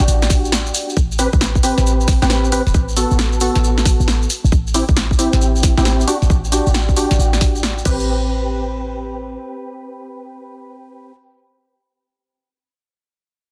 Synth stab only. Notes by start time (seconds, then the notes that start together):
Already playing: D4 F#4 G4
1.19 C4 G4 B4
1.63 C4 G4 B4
2.22 C4 G4 B4
2.52 C4 G4 B4
2.97 B3 F#4 A4
3.41 B3 F#4 A4
4.74 C4 E4 G4
5.19 C4 E4 G4
5.77 C4 E4 G4
6.07 D4 F#4 G4
6.52 D4 F#4 G4
6.97 D4 F#4 G4
7.85 C4 G4 B4